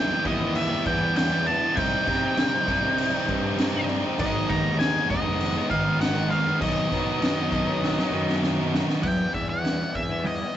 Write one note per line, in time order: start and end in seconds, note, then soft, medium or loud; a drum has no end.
0.00 0.12 B1 loud
0.00 0.23 E3 medium
0.00 0.24 E3 medium
0.00 0.12 G3 loud
0.00 0.27 G3 medium
0.00 0.25 B3 loud
0.00 0.23 E4 loud
0.00 0.27 E4 loud
0.00 0.23 G5 loud
0.09 0.24 G3 medium
0.09 0.24 B3 medium
0.09 0.24 E4 medium
0.24 0.72 D#2 medium
0.24 0.70 E3 medium
0.24 1.76 E3 medium
0.24 0.42 G3 medium
0.24 1.76 G3 medium
0.24 1.75 B3 medium
0.24 0.41 B3 medium
0.24 1.75 E4 medium
0.24 0.38 E4 medium
0.24 0.57 D#5 medium
0.24 muted distorted electric guitar stroke medium
0.24 kick medium
0.24 crash medium
0.40 0.72 G3 medium
0.40 0.71 B3 medium
0.40 0.69 E4 medium
0.55 0.84 E5 medium
0.55 crash medium
0.70 1.03 G3 medium
0.70 1.02 B3 medium
0.70 1.00 E4 medium
0.85 1.57 E2 medium
0.85 1.15 E3 medium
0.85 1.03 G3 medium
0.85 1.01 B3 medium
0.85 0.99 E4 medium
0.85 1.15 G5 medium
0.85 kick medium
0.85 crash medium
1.01 1.16 G3 medium
1.01 1.17 B3 medium
1.01 1.18 E4 medium
1.16 1.44 E3 medium
1.16 1.33 G3 loud
1.16 1.32 B3 loud
1.16 1.30 E4 loud
1.16 1.48 G5 medium
1.16 snare loud
1.16 crash loud
1.31 1.46 G3 medium
1.31 1.47 B3 medium
1.31 1.48 E4 medium
1.46 1.75 E3 medium
1.46 1.64 G3 medium
1.46 1.62 B3 medium
1.46 1.60 E4 medium
1.46 1.78 A5 loud
1.46 crash medium
1.62 1.76 G3 medium
1.62 1.76 B3 medium
1.62 1.75 E4 medium
1.76 2.00 C2 medium
1.76 2.05 C3 medium
1.76 2.65 C3 loud
1.76 2.66 G3 loud
1.76 2.07 G3 medium
1.76 2.67 C4 loud
1.76 2.08 C4 medium
1.76 2.67 D#4 loud
1.76 2.10 D#4 loud
1.76 3.84 G5 medium
1.76 kick loud
1.76 crash medium
2.07 2.35 C3 medium
2.07 2.54 C3 medium
2.07 2.36 G3 medium
2.07 2.38 C4 medium
2.07 2.40 D#4 medium
2.07 kick medium
2.07 snare soft
2.07 crash medium
2.20 2.36 G3 medium
2.20 2.36 C4 medium
2.20 2.39 D#4 medium
2.36 2.66 C3 medium
2.36 2.55 G3 medium
2.36 2.53 C4 medium
2.36 2.52 D#4 loud
2.36 snare loud
2.36 crash medium
2.52 2.67 G3 medium
2.52 2.67 C4 medium
2.52 2.68 D#4 medium
2.65 3.15 C2 medium
2.65 3.12 C3 medium
2.65 2.84 G3 medium
2.65 2.83 C4 medium
2.65 4.18 C4 medium
2.65 4.21 D#4 medium
2.65 2.81 D#4 loud
2.65 muted distorted electric guitar stroke medium
2.65 kick medium
2.65 crash medium
2.70 4.19 C3 medium
2.70 4.18 G3 medium
2.82 3.14 G3 medium
2.82 3.13 C4 medium
2.82 3.12 D#4 medium
2.98 crash medium
3.12 3.45 G3 medium
3.12 3.43 C4 medium
3.12 3.42 D#4 medium
3.26 3.99 G2 loud
3.26 3.56 C3 medium
3.26 3.45 G3 medium
3.26 3.43 C4 medium
3.26 3.42 D#4 medium
3.26 kick medium
3.26 crash medium
3.42 3.58 G3 medium
3.42 3.59 C4 medium
3.42 3.61 D#4 medium
3.58 3.87 C3 loud
3.58 3.76 G3 loud
3.58 3.75 C4 loud
3.58 3.73 D#4 loud
3.58 snare loud
3.58 crash medium
3.74 3.88 G3 medium
3.74 3.90 C4 medium
3.74 3.92 D#4 medium
3.88 4.17 C3 medium
3.88 4.06 G3 medium
3.88 4.04 C4 medium
3.88 4.03 D#4 loud
3.88 crash medium
4.04 4.19 G3 medium
4.04 4.18 C4 medium
4.04 4.22 D#4 medium
4.18 4.43 G#1 medium
4.18 5.07 G#2 loud
4.18 4.78 G#2 medium
4.18 5.08 D#3 loud
4.18 4.48 D#3 medium
4.18 5.08 G#3 loud
4.18 4.50 G#3 loud
4.18 5.10 B3 loud
4.18 5.09 D#4 loud
4.18 4.51 D#5 loud
4.18 kick loud
4.18 crash medium
4.22 4.52 B3 medium
4.22 4.53 D#4 loud
4.49 4.96 D#2 loud
4.49 4.79 D#3 medium
4.49 4.80 G#3 medium
4.49 4.82 B3 medium
4.49 4.82 D#4 loud
4.49 4.77 A#5 loud
4.49 kick medium
4.49 crash medium
4.63 4.78 G#3 medium
4.63 4.79 B3 medium
4.63 4.80 D#4 medium
4.79 5.25 G#2 loud
4.79 5.09 D#3 medium
4.79 4.96 G#3 loud
4.79 4.96 B3 medium
4.79 4.94 D#4 medium
4.79 5.07 G#5 loud
4.79 snare loud
4.79 crash medium
4.94 5.09 G#3 medium
4.94 5.11 B3 medium
4.94 5.11 D#4 medium
5.08 5.57 F1 medium
5.08 5.54 D#3 medium
5.08 5.25 G#3 medium
5.08 6.60 G#3 medium
5.08 6.63 B3 medium
5.08 5.24 B3 loud
5.08 6.59 D#4 medium
5.08 5.22 D#4 medium
5.08 5.70 D#5 medium
5.08 muted distorted electric guitar stroke medium
5.08 kick medium
5.08 crash medium
5.12 6.60 G#2 medium
5.12 6.61 D#3 medium
5.25 5.57 G#3 medium
5.25 5.56 B3 medium
5.25 5.53 D#4 medium
5.41 crash medium
5.54 5.87 B3 medium
5.54 5.84 D#4 medium
5.58 5.88 G#3 medium
5.69 6.41 G#1 medium
5.69 5.99 D#3 medium
5.69 5.86 G#3 medium
5.69 5.86 B3 medium
5.69 5.83 D#4 loud
5.69 5.98 F5 medium
5.69 kick medium
5.69 crash medium
5.85 6.01 G#3 medium
5.85 6.02 B3 medium
5.85 6.02 D#4 medium
6.00 6.46 G#2 loud
6.00 6.29 D#3 loud
6.00 6.18 G#3 loud
6.00 6.17 B3 loud
6.00 6.14 D#4 loud
6.00 6.30 F#5 loud
6.00 snare loud
6.00 crash medium
6.15 6.31 G#3 medium
6.15 6.33 B3 medium
6.15 6.33 D#4 medium
6.30 6.59 D#3 medium
6.30 6.48 G#3 medium
6.30 6.47 B3 medium
6.30 6.45 D#4 medium
6.30 6.61 F5 medium
6.30 crash medium
6.46 6.61 G#3 medium
6.46 6.62 B3 medium
6.46 6.59 D#4 medium
6.60 6.85 B1 loud
6.60 7.19 B2 medium
6.60 7.50 B2 medium
6.60 6.90 D#3 medium
6.60 7.51 D#3 medium
6.60 6.91 F#3 loud
6.60 7.51 F#3 loud
6.60 6.92 B3 medium
6.60 7.51 B3 loud
6.60 6.93 D#4 loud
6.60 8.39 D#5 medium
6.60 kick loud
6.60 crash loud
6.64 7.50 D#4 loud
6.91 7.39 B2 medium
6.91 7.20 D#3 medium
6.91 7.21 F#3 medium
6.91 7.22 B3 medium
6.91 7.22 D#4 medium
6.91 kick medium
6.91 snare soft
6.91 crash medium
7.05 7.20 F#3 medium
7.05 7.21 B3 medium
7.05 7.22 D#4 medium
7.20 7.66 B2 medium
7.20 7.51 D#3 medium
7.20 7.38 F#3 loud
7.20 7.36 B3 loud
7.20 7.34 D#4 loud
7.20 snare loud
7.20 crash medium
7.35 7.50 F#3 medium
7.35 7.51 B3 medium
7.35 7.51 D#4 medium
7.50 7.99 B1 medium
7.50 7.97 D#3 medium
7.50 7.68 F#3 medium
7.50 9.03 F#3 medium
7.50 9.02 B3 medium
7.50 7.66 B3 medium
7.50 9.02 D#4 medium
7.50 7.65 D#4 medium
7.50 muted distorted electric guitar stroke medium
7.50 kick medium
7.50 crash medium
7.55 9.04 B2 medium
7.55 9.03 D#3 medium
7.65 7.98 F#3 medium
7.65 7.97 B3 medium
7.65 7.95 D#4 medium
7.84 snare medium
7.96 8.29 F#3 medium
7.96 8.27 B3 medium
7.96 8.25 D#4 medium
7.96 snare medium
8.11 8.83 F#2 medium
8.11 8.41 D#3 medium
8.11 8.28 F#3 medium
8.11 8.27 B3 medium
8.11 8.25 D#4 medium
8.26 8.42 F#3 medium
8.26 8.43 B3 medium
8.26 8.43 D#4 medium
8.26 snare medium
8.41 8.88 B2 loud
8.41 8.71 D#3 loud
8.41 8.59 F#3 loud
8.41 8.57 B3 loud
8.41 8.56 D#4 loud
8.41 snare medium
8.57 8.72 F#3 medium
8.57 8.74 B3 medium
8.57 8.75 D#4 medium
8.72 9.01 D#3 medium
8.72 8.90 F#3 medium
8.72 8.88 B3 medium
8.72 8.86 D#4 medium
8.72 snare loud
8.87 9.03 F#3 medium
8.87 9.02 B3 medium
8.87 9.01 D#4 medium
8.87 snare medium
9.02 9.27 E2 medium
9.02 9.31 E3 medium
9.02 9.21 G3 medium
9.02 9.19 B3 medium
9.02 9.17 E4 medium
9.02 9.34 G5 loud
9.02 kick loud
9.02 crash loud
9.18 9.33 G3 medium
9.18 9.33 B3 medium
9.18 9.35 E4 medium
9.32 9.81 E2 medium
9.32 9.61 E3 medium
9.32 9.63 G3 medium
9.32 9.64 B3 medium
9.32 9.65 E4 medium
9.32 9.49 E5 medium
9.32 kick medium
9.32 open hi-hat soft
9.50 9.96 F#5 medium
9.62 9.94 E3 medium
9.62 9.82 G3 medium
9.62 9.80 B3 medium
9.62 9.78 E4 medium
9.62 snare medium
9.62 open hi-hat medium
9.79 9.95 G3 medium
9.79 9.95 B3 medium
9.79 9.94 E4 medium
9.95 10.42 E2 medium
9.95 10.26 E5 medium
9.95 muted distorted electric guitar stroke soft
9.95 kick medium
9.95 open hi-hat soft
10.09 10.42 G3 medium
10.09 10.40 B3 medium
10.09 10.38 E4 medium
10.24 10.44 E3 medium
10.24 10.45 G3 medium
10.24 10.45 B3 medium
10.24 10.45 E4 medium
10.24 10.55 D#5 medium
10.24 open hi-hat medium
10.39 10.55 G3 soft
10.39 10.56 B3 medium
10.39 10.57 E4 medium